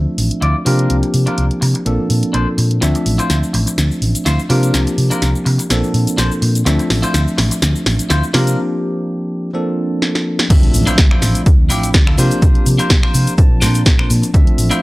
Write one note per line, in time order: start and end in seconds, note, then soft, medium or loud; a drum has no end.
0.00 0.61 F3 medium
0.00 0.62 A3 medium
0.00 0.62 C4 medium
0.00 0.62 D4 medium
0.00 0.62 E5 medium
0.18 0.29 A1 loud
0.18 open hi-hat loud
0.31 muted fingered electric bass stroke soft
0.31 closed hi-hat medium
0.41 0.53 D2 loud
0.41 0.55 E4 medium
0.41 0.55 F4 medium
0.41 0.56 D5 medium
0.41 closed hi-hat medium
0.65 0.86 C3 medium
0.65 1.81 F3 medium
0.65 1.82 A#3 medium
0.65 1.82 C4 medium
0.65 0.95 D4 medium
0.65 1.82 D4 medium
0.65 0.95 F4 medium
0.65 1.82 G4 loud
0.65 0.96 A#4 loud
0.65 open hi-hat loud
0.79 closed hi-hat soft
0.90 1.01 C2 loud
0.90 closed hi-hat medium
1.02 muted clean electric guitar stroke soft
1.02 closed hi-hat soft
1.14 1.25 C3 medium
1.14 open hi-hat loud
1.26 1.44 D4 medium
1.26 1.45 F4 medium
1.26 1.45 A#4 medium
1.26 muted fingered electric bass stroke soft
1.26 closed hi-hat soft
1.38 1.49 C2 medium
1.38 closed hi-hat medium
1.51 closed hi-hat soft
1.61 1.73 C3 medium
1.61 muted clean electric guitar stroke medium
1.61 open hi-hat medium
1.74 muted clean electric guitar stroke soft
1.74 closed hi-hat medium
1.85 1.97 A#1 medium
1.85 2.77 F3 medium
1.85 2.78 A#3 medium
1.85 2.78 C4 medium
1.85 2.78 D4 medium
1.85 2.78 A4 medium
1.85 closed hi-hat medium
1.99 muted fingered electric bass stroke soft
2.10 2.21 A#2 loud
2.10 open hi-hat loud
2.23 muted fingered electric bass stroke soft
2.23 closed hi-hat soft
2.33 2.45 A#1 medium
2.33 2.47 D4 medium
2.33 2.47 A4 medium
2.33 2.47 C5 medium
2.33 closed hi-hat medium
2.57 2.78 A#2 medium
2.57 muted clean electric guitar stroke soft
2.57 open hi-hat medium
2.71 closed hi-hat soft
2.81 2.93 D2 loud
2.81 4.45 F3 medium
2.81 4.45 A3 medium
2.81 4.46 C4 medium
2.81 4.46 D4 medium
2.81 4.46 E5 medium
2.81 muted clean electric guitar stroke loud
2.81 snare soft
2.81 closed hi-hat medium
2.81 cabasa medium
2.94 muted clean electric guitar stroke soft
2.94 closed hi-hat soft
2.94 cabasa soft
3.06 3.17 A1 medium
3.06 open hi-hat loud
3.18 3.36 E4 medium
3.18 3.37 F4 medium
3.18 3.37 C5 medium
3.18 closed hi-hat soft
3.18 cabasa medium
3.30 3.41 D2 medium
3.30 snare medium
3.30 closed hi-hat medium
3.30 cabasa medium
3.43 cabasa soft
3.53 3.65 A1 medium
3.53 muted clean electric guitar stroke medium
3.53 open hi-hat medium
3.66 muted clean electric guitar stroke soft
3.66 closed hi-hat medium
3.66 cabasa medium
3.78 3.89 D2 medium
3.78 snare medium
3.78 closed hi-hat medium
3.78 cabasa medium
3.91 cabasa soft
4.02 4.13 A1 loud
4.02 open hi-hat loud
4.15 muted fingered electric bass stroke soft
4.15 closed hi-hat soft
4.15 cabasa medium
4.25 4.37 D2 medium
4.25 4.39 E4 medium
4.25 4.39 F4 medium
4.25 4.39 C5 loud
4.25 snare medium
4.25 closed hi-hat medium
4.25 cabasa medium
4.39 cabasa soft
4.49 4.70 C3 medium
4.49 5.65 F3 medium
4.49 5.66 A#3 medium
4.49 5.66 C4 medium
4.49 4.79 D4 medium
4.49 5.66 D4 medium
4.49 4.79 F4 medium
4.49 5.66 G4 medium
4.49 4.80 A#4 loud
4.49 open hi-hat medium
4.63 closed hi-hat soft
4.63 cabasa medium
4.74 4.85 C2 loud
4.74 snare medium
4.74 closed hi-hat medium
4.74 cabasa medium
4.86 muted clean electric guitar stroke soft
4.86 closed hi-hat soft
4.86 cabasa soft
4.98 5.09 C3 loud
4.98 open hi-hat loud
5.10 5.28 D4 medium
5.10 5.29 F4 medium
5.10 5.29 A#4 loud
5.10 muted fingered electric bass stroke soft
5.10 closed hi-hat medium
5.10 cabasa medium
5.22 5.33 C2 medium
5.22 snare medium
5.22 closed hi-hat medium
5.22 cabasa medium
5.35 cabasa soft
5.45 5.57 C3 medium
5.45 muted clean electric guitar stroke medium
5.45 open hi-hat medium
5.58 muted clean electric guitar stroke soft
5.58 closed hi-hat medium
5.58 cabasa medium
5.69 5.81 A#1 medium
5.69 6.61 F3 medium
5.69 6.61 A#3 medium
5.69 6.62 C4 medium
5.69 6.62 D4 medium
5.69 6.62 A4 medium
5.69 snare medium
5.69 closed hi-hat medium
5.69 cabasa medium
5.84 cabasa soft
5.94 6.05 A#2 loud
5.94 open hi-hat loud
6.07 muted fingered electric bass stroke soft
6.07 closed hi-hat medium
6.07 cabasa medium
6.17 6.29 A#1 medium
6.17 6.31 D4 medium
6.17 6.31 A4 medium
6.17 6.32 C5 loud
6.17 snare medium
6.17 closed hi-hat medium
6.17 cabasa medium
6.32 cabasa soft
6.42 6.62 A#2 medium
6.42 muted clean electric guitar stroke soft
6.42 open hi-hat medium
6.55 closed hi-hat soft
6.55 cabasa medium
6.65 6.77 D2 loud
6.65 8.30 F3 medium
6.65 8.30 A3 medium
6.65 8.30 C4 medium
6.65 8.30 D4 medium
6.65 8.30 E5 loud
6.65 muted clean electric guitar stroke loud
6.65 snare medium
6.65 closed hi-hat medium
6.65 cabasa medium
6.78 muted clean electric guitar stroke soft
6.78 closed hi-hat soft
6.78 cabasa soft
6.90 7.01 A1 medium
6.90 snare medium
6.90 open hi-hat loud
7.02 7.20 E4 medium
7.02 7.21 F4 medium
7.02 7.21 C5 loud
7.02 muted fingered electric bass stroke soft
7.02 closed hi-hat medium
7.02 cabasa medium
7.14 7.25 D2 medium
7.14 snare medium
7.14 closed hi-hat medium
7.14 cabasa medium
7.28 cabasa soft
7.38 7.49 A1 medium
7.38 muted clean electric guitar stroke medium
7.38 snare medium
7.38 open hi-hat medium
7.51 muted clean electric guitar stroke soft
7.51 closed hi-hat medium
7.51 cabasa medium
7.62 7.73 D2 medium
7.62 snare medium
7.62 closed hi-hat medium
7.62 cabasa medium
7.76 cabasa soft
7.86 7.97 A1 loud
7.86 snare medium
7.86 open hi-hat loud
7.99 muted fingered electric bass stroke soft
7.99 closed hi-hat medium
7.99 cabasa medium
8.10 8.21 D2 loud
8.10 8.23 E4 medium
8.10 8.23 F4 medium
8.10 8.24 C5 loud
8.10 snare medium
8.10 closed hi-hat medium
8.10 cabasa medium
8.23 cabasa soft
8.33 8.54 C3 loud
8.33 9.49 F3 medium
8.33 9.50 A#3 medium
8.33 9.50 C4 medium
8.33 8.58 D4 medium
8.33 9.50 D4 medium
8.33 8.58 F4 medium
8.33 9.50 G4 loud
8.33 8.59 A#4 loud
8.33 snare medium
8.33 open hi-hat medium
8.47 closed hi-hat soft
8.47 cabasa medium
9.53 10.45 F3 medium
9.53 10.46 A#3 medium
9.53 10.46 C4 medium
9.53 10.46 D4 medium
9.53 10.46 A4 medium
10.02 snare medium
10.15 snare medium
10.39 snare medium
10.50 10.61 D2 loud
10.50 12.13 F3 medium
10.50 12.14 A3 medium
10.50 12.14 C4 medium
10.50 12.14 D4 medium
10.50 12.14 E5 loud
10.50 kick loud
10.50 closed hi-hat medium
10.50 crash loud
10.50 impact medium
10.50 cabasa soft
10.50 shaker soft
10.63 closed hi-hat soft
10.74 10.85 A1 medium
10.74 open hi-hat loud
10.74 cabasa medium
10.74 shaker medium
10.86 10.98 D4 loud
10.86 10.98 E4 loud
10.86 10.98 F4 loud
10.86 10.99 C5 loud
10.86 muted fingered electric bass stroke soft
10.86 closed hi-hat medium
10.86 cabasa soft
10.86 shaker soft
10.98 11.09 D2 medium
10.98 kick loud
10.98 snare loud
10.98 closed hi-hat medium
10.98 cabasa soft
10.98 shaker soft
11.11 11.40 D4 medium
11.11 11.41 E4 medium
11.11 11.41 F4 medium
11.11 11.41 C5 loud
11.11 finger snap medium
11.22 11.33 A1 medium
11.22 snare medium
11.22 open hi-hat medium
11.22 cabasa medium
11.22 shaker medium
11.35 closed hi-hat medium
11.35 cabasa soft
11.35 shaker medium
11.46 11.70 D2 loud
11.46 kick loud
11.46 closed hi-hat medium
11.46 cabasa soft
11.46 shaker soft
11.69 11.90 A1 medium
11.69 11.88 D4 loud
11.69 11.89 E4 loud
11.69 11.89 F4 loud
11.69 11.89 G4 loud
11.69 open hi-hat loud
11.69 cabasa medium
11.69 shaker medium
11.83 closed hi-hat medium
11.83 cabasa soft
11.83 shaker soft
11.94 12.14 D2 loud
11.94 kick loud
11.94 snare loud
11.94 closed hi-hat medium
11.94 cabasa soft
11.94 shaker soft
12.07 12.16 D4 medium
12.07 12.18 E4 medium
12.07 12.17 F4 medium
12.07 12.18 A4 loud
12.07 finger snap medium
12.17 12.29 C3 loud
12.17 13.33 F3 medium
12.17 13.34 A#3 medium
12.17 13.34 C4 medium
12.17 12.66 D4 medium
12.17 13.34 D4 medium
12.17 12.66 F4 medium
12.17 13.34 G4 loud
12.17 12.66 A#4 medium
12.17 12.67 C5 loud
12.17 open hi-hat medium
12.17 cabasa medium
12.17 shaker loud
12.31 closed hi-hat medium
12.31 cabasa soft
12.31 shaker medium
12.42 12.53 C2 loud
12.42 kick loud
12.42 closed hi-hat medium
12.42 cabasa soft
12.42 shaker soft
12.55 closed hi-hat soft
12.66 12.77 C3 medium
12.66 open hi-hat loud
12.66 cabasa medium
12.66 shaker medium
12.78 12.90 D4 loud
12.78 12.90 F4 loud
12.78 12.90 A#4 loud
12.78 12.90 C5 loud
12.78 muted fingered electric bass stroke soft
12.78 closed hi-hat medium
12.78 cabasa soft
12.78 shaker medium
12.90 13.01 C2 medium
12.90 kick loud
12.90 snare loud
12.90 closed hi-hat medium
12.90 cabasa soft
12.90 shaker soft
13.02 13.32 D4 medium
13.02 13.33 F4 medium
13.02 13.33 A#4 medium
13.02 13.33 C5 loud
13.02 finger snap medium
13.14 13.25 C3 medium
13.14 open hi-hat medium
13.14 cabasa medium
13.14 shaker loud
13.27 closed hi-hat medium
13.27 cabasa soft
13.27 shaker medium
13.37 13.64 A#1 loud
13.37 14.29 F3 medium
13.37 14.30 A#3 medium
13.37 14.30 C4 medium
13.37 14.30 D4 medium
13.37 14.30 A5 medium
13.37 kick loud
13.37 closed hi-hat medium
13.37 cabasa soft
13.37 shaker soft
13.61 13.82 A#2 medium
13.61 13.80 D4 loud
13.61 13.80 A4 loud
13.61 13.81 A#4 loud
13.61 13.81 C5 loud
13.61 snare medium
13.61 open hi-hat loud
13.61 cabasa medium
13.61 shaker loud
13.74 closed hi-hat medium
13.74 cabasa soft
13.74 shaker medium
13.86 14.06 A#1 loud
13.86 kick loud
13.86 snare loud
13.86 closed hi-hat medium
13.86 cabasa soft
13.86 shaker soft
13.98 14.10 D4 medium
13.98 14.10 A4 medium
13.98 14.10 A#4 medium
13.98 14.11 C5 loud
13.98 finger snap medium
14.10 14.21 A#2 loud
14.10 open hi-hat loud
14.10 cabasa medium
14.10 shaker loud
14.22 muted clean electric guitar stroke soft
14.22 closed hi-hat medium
14.22 cabasa soft
14.22 shaker soft
14.33 14.45 D2 loud
14.33 14.82 F3 medium
14.33 14.82 A3 medium
14.33 14.82 C4 medium
14.33 14.82 D4 medium
14.33 14.82 E5 loud
14.33 kick loud
14.33 closed hi-hat medium
14.33 cabasa soft
14.33 shaker soft
14.47 closed hi-hat soft
14.58 14.69 A1 loud
14.58 open hi-hat loud
14.58 cabasa medium
14.58 shaker loud
14.70 14.82 D4 loud
14.70 14.82 E4 loud
14.70 14.82 F4 loud
14.70 14.82 C5 loud
14.70 closed hi-hat medium
14.70 cabasa soft
14.70 shaker medium